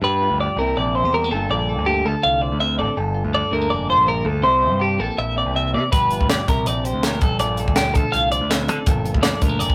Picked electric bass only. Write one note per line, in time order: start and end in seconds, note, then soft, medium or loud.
0.02 0.28 G2 medium
0.30 0.48 D2 medium
0.56 0.74 C2 medium
0.77 1.02 A#1 medium
1.04 1.30 E2 medium
1.32 1.49 G1 medium
1.49 1.78 A#1 loud
1.78 2.04 D2 medium
2.05 2.14 D2 medium
2.25 2.50 C2 medium
2.52 2.80 D2 medium
2.79 2.87 A1 medium
2.97 3.23 G1 medium
3.25 3.42 D2 medium
3.52 3.69 D2 medium
3.70 3.96 F1 medium
3.97 4.23 A#1 medium
4.25 4.43 D2 medium
4.43 4.71 C2 loud
4.71 4.98 G2 medium
4.99 5.08 A#1 medium
5.18 5.44 A#1 medium
5.46 5.75 C2 medium
5.74 5.82 C3 medium
5.93 6.18 G1 medium
6.20 6.37 D2 medium
6.48 6.65 C2 medium
6.66 6.92 A#1 medium
6.93 7.19 D2 medium
7.22 7.39 G1 medium
7.40 7.68 A#1 loud
7.68 7.93 D2 medium
7.95 8.04 D2 medium
8.14 8.40 C2 medium
8.41 8.69 D2 medium
8.69 8.77 D3 medium
8.87 9.13 G1 medium
9.14 9.32 D2 medium
9.42 9.59 D2 medium
9.60 9.75 F1 medium